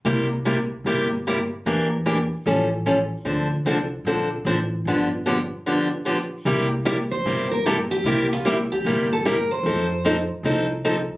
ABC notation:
X:1
M:4/4
L:1/8
Q:"Swing" 1/4=150
K:Cmix
V:1 name="Steel-string acoustic guitar"
z8 | z8 | z8 | z8 |
z2 d c2 B A G- | G F E G2 A B c- | c3 z4 z |]
V:2 name="Steel-string acoustic guitar"
[C,G,B,EG] z [C,G,B,EG] z [C,G,B,EG] z [C,G,B,EG] z | [E,B,DG] z [E,B,DG] z [^E,G,^C^EA] z [E,G,CEA] z | [D,F,CDA] z [D,F,CDA] z [D,F,CDA] z [D,F,CDA] z | [D,F,=B,DG] z [D,F,B,DG] z [D,F,B,DG] z [D,F,B,DG] z |
[C,G,B,EG] z [C,G,B,EG] z [C,G,B,EG] z [C,G,B,EG] z | [C,G,B,EG] z [C,G,B,EG] z [C,G,B,EG] z [C,G,B,EG] z | [F,C_EA] z [F,CEA] z [F,CEA] z [F,CEA] z |]
V:3 name="Upright bass" clef=bass
C,,4 G,,,4 | E,,4 A,,,4 | D,,2 C,,2 B,,,2 A,,,2 | G,,,4 z4 |
C,,4 G,,,4 | C,,4 G,,,4 | F,,4 C,,4 |]